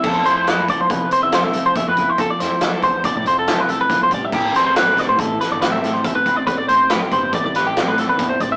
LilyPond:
<<
  \new Staff \with { instrumentName = "Clean electric guitar" } { \time 5/4 \key f \lydian \tempo 4 = 140 a'8 c''16 c''16 b'8 d''16 c''16 b'8 c''16 e''16 c''16 e''8 c''16 e''16 b'8 c''16 | a'16 d''16 c''8 b'16 a'16 c''8 d''16 d''16 c''16 a'8 b'16 a'16 b'8 c''16 d''16 e''16 | g'8 c''16 c''16 b'8 d''16 c''16 a'8 b'16 d''16 b'16 e''8 c''16 e''16 b'8 d''16 | b'16 d''16 c''8 b'16 g'16 c''8 d''16 d''16 b'16 g'8 b'16 a'16 b'8 c''16 d''16 e''16 | }
  \new Staff \with { instrumentName = "Clean electric guitar" } { \time 5/4 \key f \lydian << { <a e' a' c''>8 e'8 a'8 c''4 c''8 e'4. e'8 | r8 e'8 a'8 c''4 c''8 e'2 | r8 c'8 g'8 b'4 a'8 c'4. c'8~ | c'8 c'8 g'8 b'4 g'16 a'16 c'4. c'8 | } \\ { f2 c4. a8 f4 | f2 c4. a8 f8 g8 | a,2 e4. a8 a,4 | a,2 e4. a8 a,4 | } >> }
  \new Staff \with { instrumentName = "Fingered electric bass" } { \clef bass \time 5/4 \key f \lydian f,8 f,4~ f,16 f16 f8 r16 e,16 f8 f8 r16 f,8 r16 | r8 f,16 r16 f16 r16 e,8. a,16 f,8. f16 c,8 b,,8 a,,8 | a,,8 a,,4~ a,,16 a,16 a,8 r16 g,,16 a,8 a,8 r16 a,,8 r16 | r8 a,,16 r16 a,16 r16 g,,8. c,16 a,,8. a,8 e,16 e,8 a,,8 | }
  \new DrumStaff \with { instrumentName = "Drums" } \drummode { \time 5/4 <cymc bd>8 hh8 <hh sn>8 <hh bd>8 <hh bd>8 hh8 <hh sn>8 hh8 <hh bd>8 <hh bd>8 | <hh bd>8 <hh sn>8 <hh sn>8 <hh bd>8 <hh bd>8 hh8 <hh sn>8 hh8 <hh bd>8 <hh bd>8 | <cymc bd>8 <hh sn>8 <hh sn>8 <hh bd sn>8 <hh bd>8 <hh sn>8 <hh sn>8 <hh sn>8 <hh bd>8 <hh bd>8 | <hh bd>8 hh8 <hh sn>8 <hh bd>8 <hh bd>8 <hh sn>8 <hh sn>8 <hh sn>8 <hh bd>8 <hh bd>8 | }
>>